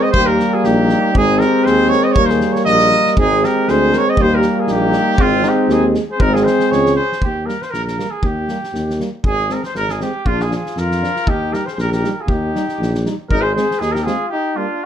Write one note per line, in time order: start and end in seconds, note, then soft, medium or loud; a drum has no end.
0.00 0.14 G#3 medium
0.00 0.15 C4 medium
0.00 0.11 D#5 loud
0.05 0.16 C5 medium
0.11 0.42 D#2 medium
0.11 1.19 G3 medium
0.11 1.12 A#3 medium
0.11 0.28 C5 loud
0.11 kick medium
0.16 0.31 G4 loud
0.26 0.55 A#4 loud
0.31 0.56 G4 medium
0.39 snare soft
0.54 0.69 F4 medium
0.54 0.66 G#4 medium
0.64 0.94 A#1 loud
0.64 1.16 D#4 loud
0.64 1.15 G4 loud
0.64 snare soft
0.89 snare soft
1.13 1.43 G#1 loud
1.13 2.17 C4 loud
1.13 1.40 G#4 loud
1.13 kick medium
1.18 2.19 G#3 medium
1.18 1.46 D#4 medium
1.39 1.66 A#4 loud
1.39 snare soft
1.45 1.71 G4 medium
1.65 1.94 D#2 medium
1.65 1.90 C5 loud
1.65 snare soft
1.69 1.95 G#4 medium
1.89 2.05 C#5 loud
1.89 snare soft
1.94 2.09 A#4 medium
2.04 2.19 C5 medium
2.04 2.13 D#5 medium
2.12 3.18 A#3 medium
2.12 2.27 C#5 loud
2.12 kick medium
2.17 2.44 D#2 medium
2.17 3.19 G3 medium
2.17 2.33 A#4 loud
2.26 2.54 C5 medium
2.26 snare soft
2.31 2.60 G#4 medium
2.41 snare soft
2.52 2.65 C#5 medium
2.52 snare soft
2.58 2.68 A#4 medium
2.65 2.95 A#1 medium
2.65 3.15 A#4 medium
2.65 3.13 D#5 loud
2.65 snare soft
2.79 snare soft
2.91 snare soft
3.06 snare soft
3.17 3.46 G#1 loud
3.17 4.19 G#3 medium
3.17 4.20 C4 medium
3.17 3.46 D#4 medium
3.17 3.46 G#4 loud
3.17 kick medium
3.44 3.70 G4 medium
3.44 3.71 A#4 medium
3.44 snare soft
3.68 3.96 D2 medium
3.68 3.95 G#4 medium
3.68 3.99 C5 loud
3.68 snare soft
3.92 4.09 A#4 medium
3.92 snare soft
3.98 4.11 C#5 loud
4.07 4.19 C5 medium
4.07 4.23 D#5 loud
4.17 4.47 D#2 loud
4.17 5.21 G3 medium
4.17 5.19 A#3 loud
4.17 4.31 G4 medium
4.17 kick medium
4.21 4.36 C5 loud
4.31 4.57 G4 medium
4.31 4.61 A#4 medium
4.42 snare soft
4.56 4.69 F4 medium
4.60 4.73 G#4 medium
4.67 4.97 A#1 medium
4.67 5.19 D#4 medium
4.67 snare soft
4.71 5.23 G4 loud
4.92 snare soft
5.17 5.48 G#1 medium
5.17 6.03 G#3 medium
5.17 5.46 C4 medium
5.17 6.00 C4 medium
5.17 5.50 F4 loud
5.17 kick medium
5.43 5.71 D#4 medium
5.43 snare soft
5.48 5.74 G4 medium
5.69 5.97 D#2 loud
5.69 5.84 D#4 medium
5.69 5.85 G#4 loud
5.69 snare soft
5.94 snare soft
6.09 6.23 G#4 medium
6.09 6.22 C5 medium
6.17 6.48 G#1 loud
6.17 7.00 G#3 medium
6.17 6.98 C4 medium
6.17 6.35 A#4 loud
6.17 kick medium
6.22 6.36 D#4 medium
6.34 6.44 F4 medium
6.34 6.46 G#4 medium
6.34 snare soft
6.43 6.68 G#4 medium
6.43 6.73 C5 medium
6.47 snare soft
6.59 snare soft
6.68 6.95 G#4 medium
6.68 6.95 C#5 loud
6.72 6.99 C#2 loud
6.72 snare soft
6.86 snare soft
6.95 7.19 G#4 medium
6.95 7.19 C5 medium
7.12 snare soft
7.22 7.50 D#2 medium
7.22 7.47 G4 medium
7.22 kick medium
7.45 7.57 G3 medium
7.45 7.56 A#3 soft
7.45 7.64 A#4 medium
7.45 snare soft
7.62 7.72 C5 medium
7.62 snare soft
7.70 8.01 A#1 medium
7.70 7.84 A#4 medium
7.70 snare soft
7.84 8.12 A#4 medium
7.84 snare soft
7.97 8.07 G3 medium
7.97 8.08 A#3 soft
7.97 snare soft
8.11 8.27 G#4 medium
8.22 8.50 D#2 medium
8.22 9.00 G4 medium
8.22 kick medium
8.48 8.59 G3 medium
8.48 8.58 A#3 medium
8.48 snare soft
8.63 snare soft
8.73 9.01 D#2 medium
8.73 snare soft
8.90 snare soft
8.99 9.09 G3 medium
8.99 9.09 A#3 soft
8.99 snare soft
9.24 9.52 G#1 medium
9.24 9.54 G#4 loud
9.24 kick medium
9.49 9.60 G#3 medium
9.49 9.60 C4 medium
9.49 9.64 A#4 medium
9.49 snare soft
9.63 9.75 C5 medium
9.63 snare soft
9.75 10.03 G#1 medium
9.75 9.92 A#4 loud
9.75 snare soft
9.89 10.01 G#4 medium
9.89 snare soft
10.00 10.11 G#3 medium
10.00 10.10 C4 soft
10.00 10.28 G4 medium
10.00 snare soft
10.25 10.54 A#1 medium
10.25 10.43 F4 medium
10.25 kick medium
10.31 10.47 D4 medium
10.40 10.53 G#4 medium
10.40 snare soft
10.45 10.53 F4 medium
10.50 10.61 F3 medium
10.50 10.60 D4 soft
10.50 10.79 F4 medium
10.50 snare soft
10.55 10.80 G#4 medium
10.66 snare soft
10.77 11.05 F2 medium
10.77 11.30 F4 medium
10.77 11.30 A#4 medium
10.77 snare soft
10.91 snare soft
11.00 11.12 F3 medium
11.00 11.11 D4 medium
11.00 snare soft
11.16 snare soft
11.26 11.55 D#2 medium
11.26 11.57 D#4 medium
11.26 11.55 G4 medium
11.26 kick medium
11.52 11.63 G3 medium
11.52 11.63 D#4 soft
11.52 11.69 G4 medium
11.52 11.67 A#4 medium
11.52 snare soft
11.66 11.72 G4 soft
11.66 11.73 C5 medium
11.66 snare soft
11.70 11.75 G#4 soft
11.70 11.79 C5 medium
11.75 12.06 A#1 medium
11.75 11.80 G#4 medium
11.75 snare soft
11.80 11.93 G4 medium
11.80 11.92 A#4 medium
11.92 12.16 G4 medium
11.92 12.12 A#4 medium
11.92 snare soft
12.02 12.14 G3 medium
12.02 12.12 D#4 medium
12.02 snare soft
12.12 12.22 A#4 medium
12.16 12.22 G4 soft
12.21 12.34 F4 medium
12.21 12.31 G#4 medium
12.26 12.55 D#2 medium
12.26 13.05 G4 medium
12.26 kick medium
12.33 13.07 D#4 medium
12.54 12.65 G3 medium
12.54 12.65 D#4 medium
12.54 snare soft
12.69 snare soft
12.78 13.06 A#1 medium
12.82 snare soft
12.95 snare soft
13.04 13.15 G3 medium
13.04 13.15 D#4 medium
13.04 snare soft
13.29 13.57 G#1 medium
13.29 13.43 D#4 loud
13.29 13.43 A#4 loud
13.29 kick medium
13.41 13.55 G#4 medium
13.41 13.54 C5 loud
13.54 13.66 G#3 medium
13.54 13.66 C4 medium
13.54 13.83 G#4 medium
13.54 13.81 C5 medium
13.54 snare soft
13.71 snare soft
13.79 14.09 D#2 medium
13.79 13.96 D#4 medium
13.79 13.93 G#4 loud
13.79 snare soft
13.92 14.08 G4 medium
13.92 14.05 A#4 medium
13.92 snare soft
14.04 14.17 G#3 medium
14.04 14.15 C4 medium
14.04 14.32 F4 medium
14.04 14.28 G#4 medium
14.04 snare soft
14.29 14.59 D#4 medium
14.29 14.58 G4 medium
14.56 14.66 G3 medium
14.56 14.67 A#3 soft
14.56 14.86 D4 medium
14.56 14.86 F4 medium